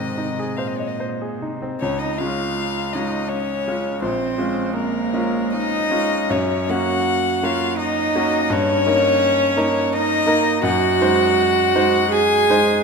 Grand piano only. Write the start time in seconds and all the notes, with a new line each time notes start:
Already playing: G#2 D#3 G#3 C4
0.18 D#4
0.39 G#4
0.58 C5
0.80 D#5
1.00 C5
1.22 G#4
1.42 D#4
1.62 C4
1.82 C#2
2.20 G#3 C#4 F4
2.95 G#3 C#4 F4
3.68 G#3 C#4 F4
4.02 A#1
4.38 G#3 C#4 F4
5.13 G#3 C#4 F4
5.90 G#3 C#4 F4
6.30 F#2
6.69 A#3 C#4 F#4
7.43 A#3 C#4 F#4
8.15 A#3 C#4 F#4
8.50 G2
8.86 A#3 D#4 A#4
9.57 A#3 D#4 A#4
10.26 A#3 D#4 A#4
10.63 F#2
11.01 G#3 D#4 C5
11.75 G#3 D#4 C5
12.50 G#3 D#4 C5